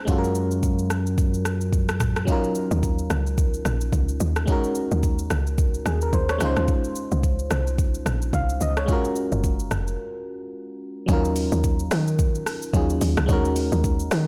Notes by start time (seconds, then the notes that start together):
0.05 F#2 G#3 C#4 F4, kick, shaker
0.10 F#4 A4
0.18 A#4
0.24 shaker
0.35 shaker
0.51 shaker
0.63 kick, shaker
0.79 shaker
0.90 cross-stick, shaker
1.07 shaker
1.18 kick, shaker
1.34 shaker
1.45 cross-stick, shaker
1.61 shaker
1.73 kick, shaker
1.89 cross-stick, shaker
2.00 kick, cross-stick, mid tom, shaker
2.16 cross-stick, shaker
2.25 F#3 C#4 D#4, kick, shaker
2.30 F4 A#4
2.44 shaker
2.55 shaker
2.71 D#2, shaker
2.83 kick, shaker
2.99 shaker
3.10 C#2, cross-stick, shaker
3.27 shaker
3.38 kick, shaker
3.54 shaker
3.65 A#1, cross-stick, shaker
3.81 shaker
3.92 C#2, kick, shaker
4.09 shaker
4.20 D#2, shaker
4.36 cross-stick, shaker
4.46 G#3 C#4 D#4, kick, shaker
4.50 F#4 A#4
4.64 shaker
4.75 shaker
4.91 D#2, shaker
5.03 kick, shaker
5.19 shaker
5.30 C#2, cross-stick, shaker
5.47 shaker
5.58 kick, shaker
5.74 shaker
5.86 D#2 G#4, cross-stick, shaker
6.01 A#4, shaker
6.13 D#2 C5, kick, shaker
6.29 C#5, cross-stick, shaker
6.38 C#2 G#3 C#4 D#4, cross-stick, shaker
6.43 F4 C5
6.56 D#2, cross-stick, shaker
6.68 kick, shaker
6.84 shaker
6.95 shaker
7.12 C#2, shaker
7.23 kick, shaker
7.39 shaker
7.51 C2, cross-stick, shaker
7.67 shaker
7.78 kick, shaker
7.94 shaker
8.06 A#1, cross-stick, shaker
8.22 shaker
8.33 C2 F5, kick, shaker
8.49 shaker
8.61 C#2 D#5, shaker
8.77 C#5, cross-stick, shaker
8.86 G#3 C#4 F4, kick, shaker
8.91 F#4 A#4
9.05 shaker
9.16 shaker
9.32 F#1, shaker
9.44 kick, shaker
9.59 shaker
9.71 F1, cross-stick, shaker
9.87 shaker
11.06 D#2 F#3 C#4 D#4, kick, shaker
11.11 F4 A#4
11.25 shaker
11.36 open hi-hat, shaker
11.52 D#2, shaker
11.64 kick, shaker
11.79 shaker
11.91 D#3, cross-stick, open hi-hat, shaker
12.08 shaker
12.19 kick, shaker
12.35 shaker
12.46 cross-stick, open hi-hat, shaker
12.62 shaker
12.73 D#2 F#3 C#4 D#4 F4 G#4, kick, shaker
12.90 shaker
13.01 D#2, open hi-hat, shaker
13.17 C#2, cross-stick, shaker
13.26 D#2 G#3 C#4 D#4, kick, shaker
13.31 F#4 A#4
13.45 shaker
13.56 open hi-hat, shaker
13.72 D#2, shaker
13.84 kick, shaker
14.00 shaker
14.11 D#3, cross-stick, open hi-hat, shaker